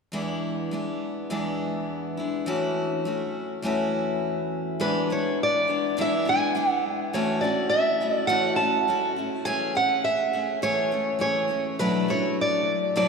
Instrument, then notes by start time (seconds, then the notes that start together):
steel-string acoustic guitar
0.12 E2 E3 G#3 B3 D4 E4
0.71 G#3 B3 D4 E4
1.30 E2 E3 G#3 B3 D4 E4
2.17 G#3 B3 D4 E4
2.46 E2 E3 A3 C#4 E4 F#4
3.05 A3 C#4 E4 F#4
3.62 E2 E3 A3 C#4 E4 F#4
4.80 E2 E3 G#3 B3 D4 E4 B4
5.10 G#3 B3 D4 E4 C#5
5.43 D5
5.68 G#3 B3 D4 E4
5.97 E2 E3 G#3 B3 D4 E4
6.01 E5
6.25 G#3 B3 D4 E4 G#5
6.55 G#3 B3 D4 E4
6.70 F#5
7.13 E2 E3 A3 C#4 E4 F#4 C#5
7.41 C#4 E4 F#4 D5
7.45 A3
7.70 E5
8.01 A3 C#4 E4 F#4
8.18 D5
8.27 E2 E3 A3 C#4 E4 F#4 F#5
8.56 E4 A5
8.60 A3 C#4 F#4
8.88 A3 C#4 E4 F#4
9.16 A3 C#4 E4 F#4
9.45 E3 A3 C#4 G#4 G#5
9.75 A3 C#4 G#4 F#5
10.04 E5
10.33 A3 C#4 G#4
10.62 E3 A3 C#4 G#4 C#5
10.91 A3 C#4 G#4
11.19 E3 A3 C#4 G#4 C#5
11.48 A3 C#4 G#4
11.79 E2 B2 F#3 A3 D4 E4 B4
12.08 F#3 A3 D4 E4 C#5
12.41 D5
12.96 E2 B2 F#3 A3 D4 E4 D5